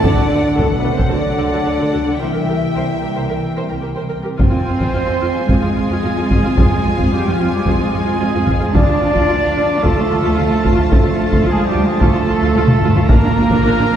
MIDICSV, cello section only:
0, 0, Header, 1, 2, 480
1, 0, Start_track
1, 0, Tempo, 544465
1, 28, Time_signature, 4, 2, 24, 8
1, 12310, End_track
2, 0, Start_track
2, 0, Title_t, "Cello section"
2, 0, Program_c, 0, 48
2, 30, Note_on_c, 0, 50, 60
2, 500, Note_off_c, 0, 50, 0
2, 511, Note_on_c, 0, 45, 61
2, 661, Note_on_c, 0, 47, 50
2, 670, Note_off_c, 0, 45, 0
2, 817, Note_on_c, 0, 48, 51
2, 822, Note_off_c, 0, 47, 0
2, 983, Note_off_c, 0, 48, 0
2, 985, Note_on_c, 0, 50, 52
2, 1949, Note_off_c, 0, 50, 0
2, 1953, Note_on_c, 0, 52, 42
2, 3365, Note_off_c, 0, 52, 0
2, 3875, Note_on_c, 0, 60, 58
2, 4799, Note_off_c, 0, 60, 0
2, 4840, Note_on_c, 0, 56, 59
2, 5786, Note_off_c, 0, 56, 0
2, 5797, Note_on_c, 0, 56, 56
2, 6266, Note_off_c, 0, 56, 0
2, 6272, Note_on_c, 0, 55, 57
2, 6427, Note_on_c, 0, 53, 52
2, 6433, Note_off_c, 0, 55, 0
2, 6586, Note_on_c, 0, 55, 57
2, 6587, Note_off_c, 0, 53, 0
2, 6749, Note_on_c, 0, 56, 62
2, 6750, Note_off_c, 0, 55, 0
2, 7709, Note_on_c, 0, 62, 63
2, 7711, Note_off_c, 0, 56, 0
2, 8665, Note_on_c, 0, 57, 65
2, 8670, Note_off_c, 0, 62, 0
2, 9621, Note_off_c, 0, 57, 0
2, 9632, Note_on_c, 0, 57, 65
2, 10102, Note_off_c, 0, 57, 0
2, 10114, Note_on_c, 0, 56, 72
2, 10267, Note_on_c, 0, 55, 63
2, 10273, Note_off_c, 0, 56, 0
2, 10429, Note_off_c, 0, 55, 0
2, 10432, Note_on_c, 0, 56, 67
2, 10585, Note_on_c, 0, 57, 68
2, 10592, Note_off_c, 0, 56, 0
2, 11529, Note_off_c, 0, 57, 0
2, 11542, Note_on_c, 0, 58, 74
2, 12310, Note_off_c, 0, 58, 0
2, 12310, End_track
0, 0, End_of_file